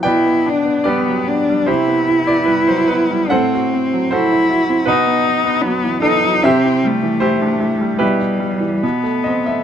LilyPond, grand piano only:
<<
  \new Staff \with { instrumentName = "Grand piano" } { \time 4/4 \key c \lydian \tempo 4 = 75 <b' d'' g''>4 <g' b' d''>4 <e' g' c''>8. d''16 b'16 c''16 b'8 | <a' c'' fis''>4 <fis' a' c''>4 <dis' fis' b'>4. a'8 | <g' c'' e''>4 <e' g' c''>4 <e' g' b'>4. dis''16 e''16 | }
  \new Staff \with { instrumentName = "Grand piano" } { \time 4/4 \key c \lydian b,16 b16 d'16 b16 g16 fis16 b16 g16 c16 b16 e'16 b16 g16 fis16 b16 g16 | a,16 fis'16 c'16 fis8 e'16 fis'16 c'16 b,16 b16 dis'16 b16 fis16 e16 b16 fis16 | c16 e'16 g16 e8 d'16 e'16 g16 b,16 e'16 g16 e16 b,16 a16 c'16 a16 | }
>>